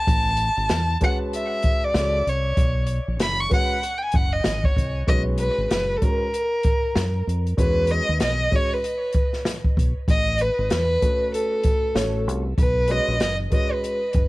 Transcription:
Already playing: A5
0.07 A1, kick, closed hi-hat
0.37 closed hi-hat
0.57 G#1
0.69 E2, snare, closed hi-hat
1.01 G#3 C#4 F#4 B4 F#5, kick, closed hi-hat
1.33 E5, closed hi-hat
1.63 kick, closed hi-hat
1.84 D5
1.94 C#2 G#3 C#4 F#4 A4, snare, closed hi-hat
2.27 C2 C#5, closed hi-hat
2.57 B1, kick, closed hi-hat
2.87 closed hi-hat
3.08 A#1
3.20 F#1 B5, snare, closed hi-hat
3.41 C#6
3.49 G#3 C#4 F#4 B4, kick, closed hi-hat
3.54 F#5
3.83 closed hi-hat
3.98 G5
4.03 G#5
4.12 F#1, kick, closed hi-hat
4.16 F#5
4.33 D#5
4.44 G#1, snare, closed hi-hat
4.64 C#5, kick
4.77 C2, kick, closed hi-hat
5.07 B1 G#3 C#4 F#4 B4 D#5, kick, closed hi-hat
5.38 B4, closed hi-hat
5.58 G#1
5.70 F#1 B4, snare, closed hi-hat
5.97 A4
6.01 G#3 C#4 F#4 A#4, kick, closed hi-hat
6.34 closed hi-hat
6.63 kick, closed hi-hat
6.96 F#2, snare, closed hi-hat
7.27 F2, closed hi-hat
7.47 closed hi-hat
7.57 E2 G#3 C#4 F#4 B4, kick, closed hi-hat
7.87 closed hi-hat
7.91 D#5
8.09 D#2
8.20 B1 D#5, snare, closed hi-hat
8.51 G#3 C#4 F#4 C#5, kick, open hi-hat
8.56 C#5
8.74 B4
8.84 closed hi-hat
9.12 kick, closed hi-hat
9.33 snare
9.45 snare, closed hi-hat
9.64 kick
9.77 B1, kick, closed hi-hat
10.08 A1 D#5, kick, closed hi-hat
10.38 B4, closed hi-hat
10.58 G#1
10.70 E2 B4, snare, closed hi-hat
11.01 A3 C#4 F#4 B4, kick, closed hi-hat
11.34 A4, closed hi-hat
11.63 kick, closed hi-hat
11.95 A1 A3 C#4 F#4 C#5, snare, closed hi-hat
12.27 C2, closed hi-hat
12.58 B1 B4, kick, closed hi-hat
12.87 G#3 C#4 F#4 B4 D#5, closed hi-hat
13.08 A#1
13.20 F#1 D#5, snare, closed hi-hat
13.50 G#3 C#4 F#4 B4 D#5, kick, closed hi-hat
13.73 B4
13.84 closed hi-hat
14.13 F#1, kick, closed hi-hat

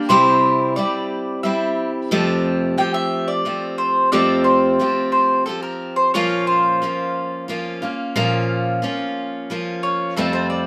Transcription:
0.09 C3 G3 C4 E4 G4 C5
0.76 G3 C4 E4 G4 D5
1.43 G3 C4 E4 G4 E5
2.11 F2 C3 F3 A3 C4 G4
2.78 F3 A3 C4 G4 G5
2.94 E5
3.28 D5
3.45 F3 A3 C4 G4
3.78 C5
4.12 F2 C3 F3 A3 C4 G4 D5
4.44 C5
4.79 F3 A3 C4 G4
5.12 C5
5.46 F3 C4 G4 A4
5.63 A#4
5.96 C5
6.14 A#2 F3 A#3 C#4 F4 C#5
6.47 C5
6.82 F3 A#3 C#4 F4
7.48 F3 A#3 C#4 F4
7.82 A#3 C#4 F4
8.16 A#2 F3 A#3 C#4 F4
8.82 F3 A#3 C#4 F4
9.50 F3 A#3 C#4 F4
9.83 C#5
10.17 F2 C3 G3 A3 C4 F4 A4
10.33 C5
10.50 D5

